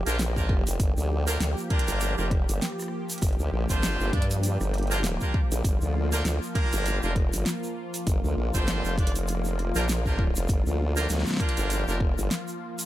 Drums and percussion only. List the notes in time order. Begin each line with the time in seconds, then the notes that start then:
0.06 closed hi-hat, shaker
0.19 snare, closed hi-hat, shaker
0.36 kick, shaker
0.49 kick
0.67 closed hi-hat, shaker
0.80 kick, closed hi-hat, shaker
0.97 shaker
1.28 closed hi-hat, shaker
1.40 snare, closed hi-hat, shaker
1.58 shaker
1.70 kick, closed hi-hat
1.79 closed hi-hat
1.88 closed hi-hat, shaker
2.01 closed hi-hat, shaker
2.18 shaker
2.31 kick, cross-stick, closed hi-hat
2.49 closed hi-hat, shaker
2.62 cross-stick, snare, closed hi-hat, shaker
2.68 cross-stick
2.72 cross-stick
2.79 cross-stick, shaker
2.82 cross-stick
2.88 cross-stick
3.10 closed hi-hat, shaker
3.12 closed hi-hat
3.18 closed hi-hat
3.22 kick, closed hi-hat, shaker
3.28 closed hi-hat
3.33 closed hi-hat
3.39 shaker
3.70 kick, closed hi-hat, shaker
3.83 snare, closed hi-hat, shaker
4.01 shaker
4.13 kick, closed hi-hat
4.22 closed hi-hat
4.31 closed hi-hat, shaker
4.43 closed hi-hat, shaker
4.61 cross-stick, shaker
4.74 cross-stick, closed hi-hat
4.78 closed hi-hat
4.83 closed hi-hat
4.87 closed hi-hat
4.91 cross-stick, closed hi-hat, shaker
4.98 closed hi-hat
5.01 snare, closed hi-hat
5.04 closed hi-hat, shaker
5.21 kick, shaker
5.34 kick
5.52 closed hi-hat, shaker
5.64 kick, closed hi-hat, shaker
5.81 shaker
6.12 closed hi-hat, shaker
6.25 snare, closed hi-hat, shaker
6.43 shaker
6.55 kick, closed hi-hat
6.73 closed hi-hat, shaker
6.86 closed hi-hat, shaker
7.03 shaker
7.16 kick, cross-stick, closed hi-hat
7.33 closed hi-hat, shaker
7.46 cross-stick, snare, closed hi-hat, shaker
7.63 shaker
7.94 closed hi-hat, shaker
8.07 kick, closed hi-hat, shaker
8.24 shaker
8.54 kick, closed hi-hat, shaker
8.67 snare, closed hi-hat, shaker
8.85 shaker
8.98 kick, closed hi-hat
9.07 closed hi-hat
9.16 closed hi-hat, shaker
9.28 closed hi-hat, shaker
9.45 shaker
9.59 cross-stick, closed hi-hat
9.75 closed hi-hat, shaker
9.89 snare, closed hi-hat, shaker
10.06 kick, shaker
10.19 kick
10.36 closed hi-hat, shaker
10.48 kick, closed hi-hat, shaker
10.66 shaker
10.96 closed hi-hat, shaker
11.09 snare, closed hi-hat, shaker
11.14 snare
11.19 snare
11.23 snare, shaker
11.27 snare
11.31 snare
11.34 snare
11.37 kick, snare, closed hi-hat
11.49 closed hi-hat
11.57 closed hi-hat, shaker
11.70 closed hi-hat, shaker
11.88 shaker
12.00 kick, cross-stick
12.18 shaker
12.31 cross-stick, snare, closed hi-hat, shaker
12.48 shaker
12.79 closed hi-hat, shaker